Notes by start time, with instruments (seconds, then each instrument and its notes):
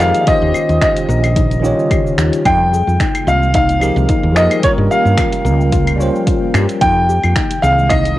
Already playing: ambient pad D#3 G#3 A#3 G5
0.00 fretless electric bass F2, tine electric piano F3 D#4 G4 G#4 A#4, synth pluck F4, grand piano F5, finger snap, shaker
0.14 closed hi-hat, shaker
0.21 tine electric piano D#3, grand piano F5
0.25 ambient pad C#3 G3 F4, tine electric piano C#4 F4 G4, synth pluck D#4, grand piano D#5, kick, closed hi-hat, shaker
0.30 tine electric piano C5
0.42 fretless electric bass D#2
0.54 synth pluck G4, claves, shaker
0.69 fretless electric bass D#2, closed hi-hat, shaker
0.81 synth pluck D#4, grand piano D#5, finger snap, kick, closed hi-hat, shaker
0.97 closed hi-hat, shaker
1.09 fretless electric bass A#1, synth pluck A#4, shaker
1.24 closed hi-hat, claves, shaker
1.36 synth pluck D#4, kick, closed hi-hat, shaker
1.51 closed hi-hat, shaker
1.60 tine electric piano D#3 C#4 F4, synth pluck D#4
1.64 tine electric piano G4 C#5, shaker
1.79 shaker
1.90 synth pluck G4, kick, closed hi-hat, claves, shaker
2.07 shaker
2.18 fretless electric bass D#2, synth pluck D#4, finger snap, shaker
2.33 closed hi-hat, shaker
2.45 fretless electric bass F2, ambient pad D#3 G#3 A#3 G5, synth pluck D#4, grand piano G5, kick, closed hi-hat, claves, shaker
2.73 synth pluck G#4, shaker
2.87 fretless electric bass F2, shaker
3.00 synth pluck D#4, finger snap, kick, closed hi-hat, shaker
3.15 closed hi-hat, claves, shaker
3.27 fretless electric bass C2, synth pluck F4, grand piano F5, shaker
3.43 shaker
3.54 synth pluck D#4, grand piano F5, kick, closed hi-hat, shaker
3.69 closed hi-hat, shaker
3.80 tine electric piano F3 D#4 G4 G#4 A#4, synth pluck G4, claves, shaker
3.96 fretless electric bass C2, shaker
4.08 synth pluck D#4, kick, closed hi-hat, shaker
4.23 fretless electric bass D#2
4.34 fretless electric bass F2, tine electric piano F3 D#4 G4 G#4 A#4, synth pluck G#4, grand piano D#5, finger snap, shaker
4.51 closed hi-hat, claves, shaker
4.60 ambient pad F3, tine electric piano G3 C#4, synth pluck F4, grand piano C#5, kick, closed hi-hat
4.64 tine electric piano F4 A#4, shaker
4.78 fretless electric bass G2
4.90 synth pluck G4, grand piano F5, shaker
5.05 fretless electric bass G2, shaker
5.17 synth pluck F4, finger snap, kick, closed hi-hat, claves, shaker
5.33 closed hi-hat, shaker
5.45 fretless electric bass C#2, synth pluck A#4, shaker
5.61 shaker
5.72 synth pluck F4, kick, closed hi-hat, shaker
5.87 closed hi-hat, claves, shaker
5.96 tine electric piano G3 C#4 F4, synth pluck C#5
6.01 tine electric piano C5, shaker
6.16 shaker
6.27 synth pluck F4, kick, closed hi-hat, shaker
6.54 fretless electric bass G2, synth pluck G4, finger snap, claves, shaker
6.69 closed hi-hat, shaker
6.81 fretless electric bass F2, ambient pad D#3 G#3 A#3, synth pluck D#4, grand piano G5, kick, closed hi-hat, shaker
7.09 synth pluck G4, shaker
7.24 fretless electric bass F2, claves, shaker
7.36 synth pluck D#4, finger snap, kick, closed hi-hat, shaker
7.51 closed hi-hat, shaker
7.62 fretless electric bass C2, synth pluck G#4, grand piano F5, shaker
7.79 shaker
7.89 synth pluck D#4, grand piano D#5, kick, closed hi-hat, claves, shaker
8.05 closed hi-hat, shaker